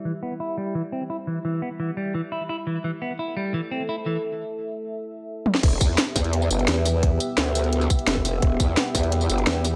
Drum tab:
CC |----------------|----------------|----------------|----------------|
HH |----------------|----------------|----------------|----------------|
TB |----------------|----------------|----------------|----------------|
SD |----------------|----------------|----------------|---------------o|
T1 |----------------|----------------|----------------|--------------o-|
BD |----------------|----------------|----------------|----------------|

CC |x---------------|----------------|----------------|
HH |x-x-x-oxx-xxx-o-|x-x-x-oxx-xxx-o-|x-x-x-oxx-xxx-o-|
TB |--x---x--xx---x-|--x---x--xx---x-|--x---x--xx---x-|
SD |----o-o-----o-o-|----o----o--o-o-|----o-o-----o-o-|
T1 |----------------|----------------|----------------|
BD |o-o---o---------|o---------o--o--|o-o---o---------|